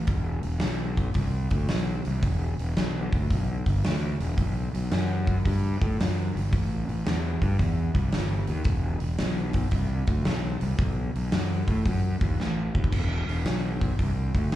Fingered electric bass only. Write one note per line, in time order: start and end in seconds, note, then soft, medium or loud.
0.08 0.38 E1 medium
0.45 0.59 E1 medium
0.63 1.07 B1 medium
1.15 1.45 C2 medium
1.51 1.66 D2 medium
1.70 2.00 B1 medium
2.07 2.21 C2 medium
2.23 2.53 E1 medium
2.60 2.74 E1 medium
2.77 3.07 B1 medium
3.13 3.28 D2 medium
3.31 3.60 B1 medium
3.66 3.81 G1 medium
3.84 4.14 D2 medium
4.20 4.35 E1 medium
4.38 4.68 B1 medium
4.74 4.89 B1 medium
4.91 5.36 F#2 medium
5.46 5.75 G2 medium
5.82 5.96 A2 medium
6.00 6.29 F#2 medium
6.35 6.50 G1 medium
6.53 6.82 A1 medium
6.88 7.03 A1 medium
7.06 7.35 E2 medium
7.42 7.56 G2 medium
7.59 7.89 E2 loud
7.95 8.09 C2 medium
8.13 8.42 G1 medium
8.49 8.63 D#2 medium
8.65 8.95 E1 medium
9.02 9.16 E1 medium
9.19 9.64 B1 medium
9.72 10.02 C2 medium
10.08 10.23 D2 medium
10.26 10.56 B1 medium
10.62 10.77 C2 loud
10.79 11.09 B1 medium
11.15 11.30 B1 medium
11.32 11.62 F#2 medium
11.68 11.83 A2 medium
11.86 12.16 F#2 medium
12.21 12.36 D#2 medium
12.38 12.68 A1 medium
12.75 12.90 D#2 medium
12.93 13.22 E1 medium
13.28 13.43 E1 medium
13.45 13.90 B1 medium
13.99 14.29 C2 medium
14.35 14.50 D2 medium